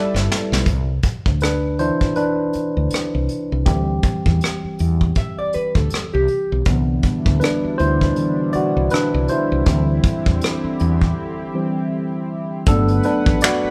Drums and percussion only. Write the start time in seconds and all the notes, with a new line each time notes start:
0.16 snare
0.32 snare
0.53 snare
0.66 kick, closed hi-hat
1.03 kick, closed hi-hat
1.26 kick
1.40 cross-stick, closed hi-hat
1.79 closed hi-hat
2.01 kick
2.16 closed hi-hat
2.53 closed hi-hat
2.90 cross-stick, closed hi-hat
3.29 closed hi-hat
3.66 kick, closed hi-hat
4.03 kick, closed hi-hat
4.26 kick
4.41 cross-stick, closed hi-hat
4.79 closed hi-hat
5.01 kick
5.15 kick, closed hi-hat
5.53 closed hi-hat
5.75 kick
5.90 cross-stick, closed hi-hat
6.28 closed hi-hat
6.65 kick, closed hi-hat
7.03 kick, closed hi-hat
7.26 kick
7.41 cross-stick, closed hi-hat
7.79 closed hi-hat
8.01 kick
8.16 closed hi-hat
8.53 closed hi-hat
8.90 cross-stick, closed hi-hat
9.28 closed hi-hat
9.66 kick, closed hi-hat
10.03 kick, closed hi-hat
10.26 kick
10.41 cross-stick, closed hi-hat
10.79 closed hi-hat
11.01 kick
12.66 kick, closed hi-hat
12.88 closed hi-hat
13.03 closed hi-hat
13.26 kick
13.41 finger snap, snare, closed hi-hat